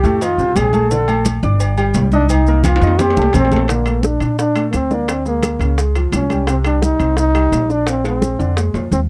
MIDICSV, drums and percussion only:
0, 0, Header, 1, 2, 480
1, 0, Start_track
1, 0, Key_signature, -2, "major"
1, 0, Tempo, 347826
1, 1260, Time_signature, 4, 2, 24, 8
1, 12547, End_track
2, 0, Start_track
2, 0, Title_t, "Drums"
2, 60, Note_on_c, 9, 63, 39
2, 65, Note_on_c, 9, 70, 30
2, 67, Note_on_c, 9, 56, 68
2, 198, Note_off_c, 9, 63, 0
2, 203, Note_off_c, 9, 70, 0
2, 205, Note_off_c, 9, 56, 0
2, 295, Note_on_c, 9, 68, 72
2, 299, Note_on_c, 9, 70, 75
2, 301, Note_on_c, 9, 63, 37
2, 304, Note_on_c, 9, 56, 108
2, 433, Note_off_c, 9, 68, 0
2, 437, Note_off_c, 9, 70, 0
2, 439, Note_off_c, 9, 63, 0
2, 442, Note_off_c, 9, 56, 0
2, 533, Note_on_c, 9, 63, 35
2, 539, Note_on_c, 9, 70, 30
2, 671, Note_off_c, 9, 63, 0
2, 677, Note_off_c, 9, 70, 0
2, 769, Note_on_c, 9, 63, 94
2, 775, Note_on_c, 9, 70, 73
2, 777, Note_on_c, 9, 66, 88
2, 777, Note_on_c, 9, 68, 112
2, 780, Note_on_c, 9, 56, 73
2, 907, Note_off_c, 9, 63, 0
2, 913, Note_off_c, 9, 70, 0
2, 915, Note_off_c, 9, 66, 0
2, 915, Note_off_c, 9, 68, 0
2, 918, Note_off_c, 9, 56, 0
2, 1006, Note_on_c, 9, 63, 78
2, 1017, Note_on_c, 9, 56, 75
2, 1020, Note_on_c, 9, 70, 32
2, 1144, Note_off_c, 9, 63, 0
2, 1155, Note_off_c, 9, 56, 0
2, 1158, Note_off_c, 9, 70, 0
2, 1255, Note_on_c, 9, 70, 76
2, 1257, Note_on_c, 9, 56, 108
2, 1393, Note_off_c, 9, 70, 0
2, 1395, Note_off_c, 9, 56, 0
2, 1490, Note_on_c, 9, 68, 115
2, 1498, Note_on_c, 9, 70, 33
2, 1505, Note_on_c, 9, 63, 36
2, 1628, Note_off_c, 9, 68, 0
2, 1636, Note_off_c, 9, 70, 0
2, 1643, Note_off_c, 9, 63, 0
2, 1723, Note_on_c, 9, 66, 59
2, 1723, Note_on_c, 9, 68, 75
2, 1729, Note_on_c, 9, 70, 80
2, 1732, Note_on_c, 9, 56, 71
2, 1735, Note_on_c, 9, 63, 99
2, 1861, Note_off_c, 9, 66, 0
2, 1861, Note_off_c, 9, 68, 0
2, 1867, Note_off_c, 9, 70, 0
2, 1870, Note_off_c, 9, 56, 0
2, 1873, Note_off_c, 9, 63, 0
2, 1973, Note_on_c, 9, 70, 33
2, 1979, Note_on_c, 9, 63, 38
2, 2111, Note_off_c, 9, 70, 0
2, 2117, Note_off_c, 9, 63, 0
2, 2209, Note_on_c, 9, 70, 72
2, 2211, Note_on_c, 9, 56, 102
2, 2213, Note_on_c, 9, 68, 86
2, 2215, Note_on_c, 9, 63, 35
2, 2347, Note_off_c, 9, 70, 0
2, 2349, Note_off_c, 9, 56, 0
2, 2351, Note_off_c, 9, 68, 0
2, 2353, Note_off_c, 9, 63, 0
2, 2450, Note_on_c, 9, 70, 29
2, 2452, Note_on_c, 9, 63, 35
2, 2452, Note_on_c, 9, 68, 104
2, 2588, Note_off_c, 9, 70, 0
2, 2590, Note_off_c, 9, 63, 0
2, 2590, Note_off_c, 9, 68, 0
2, 2679, Note_on_c, 9, 70, 75
2, 2681, Note_on_c, 9, 63, 96
2, 2689, Note_on_c, 9, 66, 91
2, 2692, Note_on_c, 9, 56, 69
2, 2817, Note_off_c, 9, 70, 0
2, 2819, Note_off_c, 9, 63, 0
2, 2827, Note_off_c, 9, 66, 0
2, 2830, Note_off_c, 9, 56, 0
2, 2921, Note_on_c, 9, 63, 85
2, 2928, Note_on_c, 9, 70, 32
2, 3059, Note_off_c, 9, 63, 0
2, 3066, Note_off_c, 9, 70, 0
2, 3161, Note_on_c, 9, 63, 95
2, 3165, Note_on_c, 9, 70, 82
2, 3175, Note_on_c, 9, 68, 116
2, 3177, Note_on_c, 9, 56, 117
2, 3299, Note_off_c, 9, 63, 0
2, 3303, Note_off_c, 9, 70, 0
2, 3313, Note_off_c, 9, 68, 0
2, 3315, Note_off_c, 9, 56, 0
2, 3405, Note_on_c, 9, 70, 32
2, 3543, Note_off_c, 9, 70, 0
2, 3639, Note_on_c, 9, 64, 107
2, 3645, Note_on_c, 9, 70, 73
2, 3650, Note_on_c, 9, 56, 73
2, 3652, Note_on_c, 9, 65, 94
2, 3652, Note_on_c, 9, 68, 108
2, 3777, Note_off_c, 9, 64, 0
2, 3783, Note_off_c, 9, 70, 0
2, 3788, Note_off_c, 9, 56, 0
2, 3790, Note_off_c, 9, 65, 0
2, 3790, Note_off_c, 9, 68, 0
2, 3807, Note_on_c, 9, 65, 97
2, 3887, Note_on_c, 9, 56, 69
2, 3897, Note_on_c, 9, 70, 31
2, 3945, Note_off_c, 9, 65, 0
2, 3964, Note_on_c, 9, 66, 90
2, 4025, Note_off_c, 9, 56, 0
2, 4035, Note_off_c, 9, 70, 0
2, 4102, Note_off_c, 9, 66, 0
2, 4123, Note_on_c, 9, 56, 100
2, 4128, Note_on_c, 9, 64, 96
2, 4130, Note_on_c, 9, 66, 91
2, 4130, Note_on_c, 9, 68, 75
2, 4131, Note_on_c, 9, 70, 71
2, 4261, Note_off_c, 9, 56, 0
2, 4266, Note_off_c, 9, 64, 0
2, 4268, Note_off_c, 9, 66, 0
2, 4268, Note_off_c, 9, 68, 0
2, 4269, Note_off_c, 9, 70, 0
2, 4283, Note_on_c, 9, 66, 110
2, 4372, Note_on_c, 9, 70, 31
2, 4374, Note_on_c, 9, 64, 79
2, 4421, Note_off_c, 9, 66, 0
2, 4440, Note_on_c, 9, 66, 89
2, 4510, Note_off_c, 9, 70, 0
2, 4512, Note_off_c, 9, 64, 0
2, 4578, Note_off_c, 9, 66, 0
2, 4595, Note_on_c, 9, 66, 101
2, 4595, Note_on_c, 9, 68, 116
2, 4608, Note_on_c, 9, 56, 78
2, 4612, Note_on_c, 9, 64, 114
2, 4617, Note_on_c, 9, 70, 76
2, 4733, Note_off_c, 9, 66, 0
2, 4733, Note_off_c, 9, 68, 0
2, 4746, Note_off_c, 9, 56, 0
2, 4750, Note_off_c, 9, 64, 0
2, 4755, Note_off_c, 9, 70, 0
2, 4757, Note_on_c, 9, 66, 92
2, 4852, Note_on_c, 9, 56, 74
2, 4852, Note_on_c, 9, 64, 100
2, 4860, Note_on_c, 9, 70, 32
2, 4895, Note_off_c, 9, 66, 0
2, 4918, Note_on_c, 9, 66, 110
2, 4990, Note_off_c, 9, 56, 0
2, 4990, Note_off_c, 9, 64, 0
2, 4998, Note_off_c, 9, 70, 0
2, 5056, Note_off_c, 9, 66, 0
2, 5079, Note_on_c, 9, 65, 65
2, 5095, Note_on_c, 9, 60, 68
2, 5103, Note_on_c, 9, 70, 67
2, 5217, Note_off_c, 9, 65, 0
2, 5233, Note_off_c, 9, 60, 0
2, 5241, Note_off_c, 9, 70, 0
2, 5323, Note_on_c, 9, 65, 89
2, 5334, Note_on_c, 9, 63, 33
2, 5337, Note_on_c, 9, 70, 30
2, 5341, Note_on_c, 9, 60, 33
2, 5461, Note_off_c, 9, 65, 0
2, 5472, Note_off_c, 9, 63, 0
2, 5475, Note_off_c, 9, 70, 0
2, 5479, Note_off_c, 9, 60, 0
2, 5564, Note_on_c, 9, 63, 82
2, 5574, Note_on_c, 9, 70, 62
2, 5581, Note_on_c, 9, 60, 52
2, 5702, Note_off_c, 9, 63, 0
2, 5712, Note_off_c, 9, 70, 0
2, 5719, Note_off_c, 9, 60, 0
2, 5802, Note_on_c, 9, 65, 63
2, 5809, Note_on_c, 9, 63, 31
2, 5817, Note_on_c, 9, 70, 28
2, 5940, Note_off_c, 9, 65, 0
2, 5947, Note_off_c, 9, 63, 0
2, 5955, Note_off_c, 9, 70, 0
2, 6048, Note_on_c, 9, 63, 32
2, 6057, Note_on_c, 9, 60, 61
2, 6057, Note_on_c, 9, 70, 64
2, 6186, Note_off_c, 9, 63, 0
2, 6195, Note_off_c, 9, 60, 0
2, 6195, Note_off_c, 9, 70, 0
2, 6287, Note_on_c, 9, 65, 90
2, 6294, Note_on_c, 9, 60, 31
2, 6295, Note_on_c, 9, 63, 33
2, 6295, Note_on_c, 9, 70, 27
2, 6425, Note_off_c, 9, 65, 0
2, 6432, Note_off_c, 9, 60, 0
2, 6433, Note_off_c, 9, 63, 0
2, 6433, Note_off_c, 9, 70, 0
2, 6525, Note_on_c, 9, 65, 64
2, 6532, Note_on_c, 9, 70, 67
2, 6533, Note_on_c, 9, 63, 34
2, 6541, Note_on_c, 9, 60, 30
2, 6541, Note_on_c, 9, 61, 74
2, 6663, Note_off_c, 9, 65, 0
2, 6670, Note_off_c, 9, 70, 0
2, 6671, Note_off_c, 9, 63, 0
2, 6679, Note_off_c, 9, 60, 0
2, 6679, Note_off_c, 9, 61, 0
2, 6773, Note_on_c, 9, 63, 64
2, 6774, Note_on_c, 9, 70, 27
2, 6776, Note_on_c, 9, 60, 35
2, 6911, Note_off_c, 9, 63, 0
2, 6912, Note_off_c, 9, 70, 0
2, 6914, Note_off_c, 9, 60, 0
2, 7013, Note_on_c, 9, 65, 83
2, 7019, Note_on_c, 9, 70, 68
2, 7020, Note_on_c, 9, 60, 62
2, 7020, Note_on_c, 9, 63, 33
2, 7151, Note_off_c, 9, 65, 0
2, 7157, Note_off_c, 9, 70, 0
2, 7158, Note_off_c, 9, 60, 0
2, 7158, Note_off_c, 9, 63, 0
2, 7251, Note_on_c, 9, 63, 34
2, 7255, Note_on_c, 9, 70, 28
2, 7258, Note_on_c, 9, 60, 31
2, 7389, Note_off_c, 9, 63, 0
2, 7393, Note_off_c, 9, 70, 0
2, 7396, Note_off_c, 9, 60, 0
2, 7487, Note_on_c, 9, 65, 83
2, 7494, Note_on_c, 9, 63, 91
2, 7495, Note_on_c, 9, 70, 71
2, 7496, Note_on_c, 9, 60, 56
2, 7625, Note_off_c, 9, 65, 0
2, 7632, Note_off_c, 9, 63, 0
2, 7633, Note_off_c, 9, 70, 0
2, 7634, Note_off_c, 9, 60, 0
2, 7734, Note_on_c, 9, 63, 34
2, 7737, Note_on_c, 9, 65, 67
2, 7744, Note_on_c, 9, 70, 27
2, 7872, Note_off_c, 9, 63, 0
2, 7875, Note_off_c, 9, 65, 0
2, 7882, Note_off_c, 9, 70, 0
2, 7976, Note_on_c, 9, 60, 58
2, 7977, Note_on_c, 9, 63, 32
2, 7982, Note_on_c, 9, 70, 64
2, 8114, Note_off_c, 9, 60, 0
2, 8115, Note_off_c, 9, 63, 0
2, 8120, Note_off_c, 9, 70, 0
2, 8217, Note_on_c, 9, 60, 33
2, 8217, Note_on_c, 9, 65, 65
2, 8219, Note_on_c, 9, 70, 28
2, 8227, Note_on_c, 9, 63, 31
2, 8355, Note_off_c, 9, 60, 0
2, 8355, Note_off_c, 9, 65, 0
2, 8357, Note_off_c, 9, 70, 0
2, 8365, Note_off_c, 9, 63, 0
2, 8453, Note_on_c, 9, 65, 89
2, 8453, Note_on_c, 9, 66, 64
2, 8454, Note_on_c, 9, 60, 34
2, 8454, Note_on_c, 9, 61, 75
2, 8460, Note_on_c, 9, 70, 72
2, 8463, Note_on_c, 9, 63, 77
2, 8591, Note_off_c, 9, 65, 0
2, 8591, Note_off_c, 9, 66, 0
2, 8592, Note_off_c, 9, 60, 0
2, 8592, Note_off_c, 9, 61, 0
2, 8598, Note_off_c, 9, 70, 0
2, 8601, Note_off_c, 9, 63, 0
2, 8691, Note_on_c, 9, 60, 35
2, 8692, Note_on_c, 9, 63, 75
2, 8696, Note_on_c, 9, 65, 62
2, 8712, Note_on_c, 9, 70, 28
2, 8829, Note_off_c, 9, 60, 0
2, 8830, Note_off_c, 9, 63, 0
2, 8834, Note_off_c, 9, 65, 0
2, 8850, Note_off_c, 9, 70, 0
2, 8931, Note_on_c, 9, 60, 65
2, 8935, Note_on_c, 9, 65, 67
2, 8937, Note_on_c, 9, 63, 33
2, 8944, Note_on_c, 9, 70, 67
2, 9069, Note_off_c, 9, 60, 0
2, 9073, Note_off_c, 9, 65, 0
2, 9075, Note_off_c, 9, 63, 0
2, 9082, Note_off_c, 9, 70, 0
2, 9169, Note_on_c, 9, 60, 33
2, 9170, Note_on_c, 9, 65, 92
2, 9186, Note_on_c, 9, 63, 33
2, 9187, Note_on_c, 9, 70, 27
2, 9307, Note_off_c, 9, 60, 0
2, 9308, Note_off_c, 9, 65, 0
2, 9324, Note_off_c, 9, 63, 0
2, 9325, Note_off_c, 9, 70, 0
2, 9413, Note_on_c, 9, 60, 54
2, 9419, Note_on_c, 9, 63, 85
2, 9428, Note_on_c, 9, 70, 66
2, 9551, Note_off_c, 9, 60, 0
2, 9557, Note_off_c, 9, 63, 0
2, 9566, Note_off_c, 9, 70, 0
2, 9654, Note_on_c, 9, 65, 62
2, 9665, Note_on_c, 9, 70, 29
2, 9672, Note_on_c, 9, 63, 34
2, 9792, Note_off_c, 9, 65, 0
2, 9803, Note_off_c, 9, 70, 0
2, 9810, Note_off_c, 9, 63, 0
2, 9891, Note_on_c, 9, 60, 62
2, 9905, Note_on_c, 9, 70, 67
2, 9907, Note_on_c, 9, 63, 33
2, 10029, Note_off_c, 9, 60, 0
2, 10043, Note_off_c, 9, 70, 0
2, 10045, Note_off_c, 9, 63, 0
2, 10140, Note_on_c, 9, 60, 34
2, 10141, Note_on_c, 9, 65, 84
2, 10147, Note_on_c, 9, 63, 32
2, 10148, Note_on_c, 9, 70, 28
2, 10278, Note_off_c, 9, 60, 0
2, 10279, Note_off_c, 9, 65, 0
2, 10285, Note_off_c, 9, 63, 0
2, 10286, Note_off_c, 9, 70, 0
2, 10385, Note_on_c, 9, 60, 31
2, 10385, Note_on_c, 9, 61, 74
2, 10386, Note_on_c, 9, 65, 63
2, 10386, Note_on_c, 9, 66, 67
2, 10389, Note_on_c, 9, 70, 70
2, 10392, Note_on_c, 9, 63, 36
2, 10523, Note_off_c, 9, 60, 0
2, 10523, Note_off_c, 9, 61, 0
2, 10524, Note_off_c, 9, 65, 0
2, 10524, Note_off_c, 9, 66, 0
2, 10527, Note_off_c, 9, 70, 0
2, 10530, Note_off_c, 9, 63, 0
2, 10626, Note_on_c, 9, 60, 33
2, 10626, Note_on_c, 9, 70, 26
2, 10764, Note_off_c, 9, 60, 0
2, 10764, Note_off_c, 9, 70, 0
2, 10855, Note_on_c, 9, 60, 64
2, 10867, Note_on_c, 9, 65, 73
2, 10868, Note_on_c, 9, 70, 68
2, 10869, Note_on_c, 9, 63, 33
2, 10993, Note_off_c, 9, 60, 0
2, 11005, Note_off_c, 9, 65, 0
2, 11006, Note_off_c, 9, 70, 0
2, 11007, Note_off_c, 9, 63, 0
2, 11100, Note_on_c, 9, 60, 32
2, 11101, Note_on_c, 9, 63, 32
2, 11107, Note_on_c, 9, 70, 29
2, 11110, Note_on_c, 9, 65, 80
2, 11238, Note_off_c, 9, 60, 0
2, 11239, Note_off_c, 9, 63, 0
2, 11245, Note_off_c, 9, 70, 0
2, 11248, Note_off_c, 9, 65, 0
2, 11340, Note_on_c, 9, 60, 53
2, 11345, Note_on_c, 9, 63, 86
2, 11357, Note_on_c, 9, 70, 72
2, 11478, Note_off_c, 9, 60, 0
2, 11483, Note_off_c, 9, 63, 0
2, 11495, Note_off_c, 9, 70, 0
2, 11589, Note_on_c, 9, 63, 35
2, 11598, Note_on_c, 9, 70, 29
2, 11727, Note_off_c, 9, 63, 0
2, 11736, Note_off_c, 9, 70, 0
2, 11825, Note_on_c, 9, 60, 61
2, 11825, Note_on_c, 9, 66, 64
2, 11831, Note_on_c, 9, 63, 32
2, 11835, Note_on_c, 9, 70, 66
2, 11963, Note_off_c, 9, 60, 0
2, 11963, Note_off_c, 9, 66, 0
2, 11969, Note_off_c, 9, 63, 0
2, 11973, Note_off_c, 9, 70, 0
2, 12064, Note_on_c, 9, 66, 82
2, 12071, Note_on_c, 9, 60, 33
2, 12074, Note_on_c, 9, 63, 31
2, 12078, Note_on_c, 9, 70, 27
2, 12202, Note_off_c, 9, 66, 0
2, 12209, Note_off_c, 9, 60, 0
2, 12212, Note_off_c, 9, 63, 0
2, 12216, Note_off_c, 9, 70, 0
2, 12309, Note_on_c, 9, 63, 79
2, 12313, Note_on_c, 9, 70, 64
2, 12314, Note_on_c, 9, 60, 34
2, 12314, Note_on_c, 9, 61, 75
2, 12447, Note_off_c, 9, 63, 0
2, 12451, Note_off_c, 9, 70, 0
2, 12452, Note_off_c, 9, 60, 0
2, 12452, Note_off_c, 9, 61, 0
2, 12547, End_track
0, 0, End_of_file